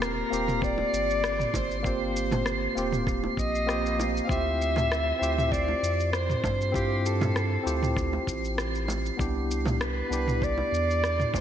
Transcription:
Already playing: D#1 A#3 C4 F4 G4 C7
0.02 A#4, cross-stick, shaker
0.30 D#1 A#3 C4 F4 G4, shaker
0.48 mid tom, shaker
0.62 D5, kick, shaker
0.78 high bongo
0.93 G1, shaker
1.10 shaker
1.24 cross-stick, shaker
1.40 mid tom, shaker
1.54 G1 C5, kick, high bongo, shaker
1.71 shaker
1.80 A#3 D5
1.84 C4 F4 G4 C5, kick, shaker
2.16 shaker
2.31 mid tom, high bongo, shaker
2.46 cross-stick, shaker
2.75 D#1 A#3 C4 F4 G4, shaker
2.93 mid tom, shaker
3.07 kick, cross-stick, shaker
3.24 high bongo
3.37 A#1 D#5, kick, shaker
3.55 shaker
3.66 A#3 C4 F4 G4, cross-stick, shaker
3.86 shaker
3.99 high bongo, shaker
4.17 shaker
4.24 C4 F5
4.29 D2 E4 F4 G4 E5, kick, shaker
4.62 shaker
4.76 mid tom, high bongo, shaker
4.92 cross-stick, shaker
5.19 D2 C4 E4 F4 G4, shaker
5.38 mid tom, shaker
5.52 D5, kick, shaker
5.68 high bongo
5.83 F2, shaker
6.00 shaker
6.12 C5, cross-stick, shaker
6.30 mid tom, shaker
6.44 G2, kick, high bongo, shaker
6.61 shaker
6.72 C4 E4 F4 G4, kick, shaker
7.06 A4, shaker
7.21 mid tom, high bongo, shaker
7.36 cross-stick, shaker
7.63 D2 C4 E4 F4 G4, shaker
7.83 mid tom, shaker
7.97 kick, cross-stick, shaker
8.13 high bongo
8.27 A1, kick, shaker
8.45 shaker
8.58 cross-stick, shaker
8.75 shaker
8.88 high bongo, shaker
9.06 shaker
9.17 C2 B3 D4 E4 G4, kick, shaker
9.51 shaker
9.66 mid tom, high bongo, shaker
9.81 B4, cross-stick, shaker
10.10 C2 B3 D4 E4 G4, shaker
10.28 mid tom, shaker
10.42 D5, kick, shaker
10.58 high bongo
10.72 E2, shaker
10.90 shaker
11.04 cross-stick, shaker
11.20 mid tom, shaker
11.34 E2 C5, kick, high bongo, shaker

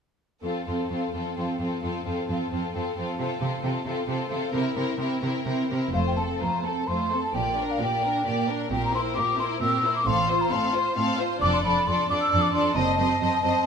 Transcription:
0.43 F2 C4 F4 A4
0.67 F2 C4 F4 A4
0.90 F2 C4 F4 A4
1.14 F2 C4 F4 A4
1.37 F2 C4 F4 A4
1.60 F2 C4 F4 A4
1.82 F2 C4 F4 A4
2.05 F2 C4 F4 A4
2.28 F2 C4 F4 A4
2.51 F2 C4 F4 A4
2.73 F2 C4 F4 A4
2.97 F2 C4 F4 A4
3.18 C3 C4 F4 A4
3.41 C3 C4 F4 A4
3.62 C3 C4 F4 A4
3.85 C3 C4 F4 A4
4.08 C3 C4 F4 A4
4.29 C3 C4 F4 A4
4.52 C3 C4 E4 A#4
4.75 C3 C4 E4 A#4
4.98 C3 C4 E4 A#4
5.21 C3 C4 E4 A#4
5.45 C3 C4 E4 A#4
5.69 C3 C4 E4 A#4
5.93 F1 F2 A3 F4 C5 F5
6.07 G5
6.17 C4 A4 A5
6.41 F2 A3 F4 C5 A#5
6.64 C4 A4 A5
6.87 F2 A3 F4 C5 C6
7.12 C4 A4
7.24 A5
7.34 A#1 A#2 A#3 G4 D5 G5
7.58 D4 A#4
7.71 F5
7.80 A#2 A#3 G4 D5 G5
8.02 D4 A#4
8.26 A#2 A#3 G4 D5
8.49 D4 A#4
8.71 A#1 A#2 C4 G4 A#4 G5
8.85 A#5
8.94 E4 A#4 C5 C6
9.16 A#2 C4 G4 A#4 D6
9.39 E4 A#4 C5 C6
9.61 A#2 C4 G4 A#4 E6
9.84 E4 A#4 C5
9.96 D6
10.06 A1 A2 C4 A4 F5 C6
10.29 F4 C5
10.41 A#5
10.51 A2 C4 A4 F5 C6
10.74 F4 C5
10.96 A2 C4 A4 F5
11.19 F4 C5
11.41 F1 F2 D4 A4 D5 D6
11.53 C6
11.64 F2 D4 A4 D5 B5
11.87 F2 D4 A4 D5 C6
12.09 F2 D4 A4 D5 D6
12.21 E6
12.30 F2 D4 A4 D5
12.42 D6
12.52 F2 D4 A4 D5 C6
12.75 F#1 F#2 C4 C5 D#5 A5
12.98 F#2 C4 C5 D#5
13.21 F#2 C4 C5 D#5
13.44 F#2 C4 C5 D#5

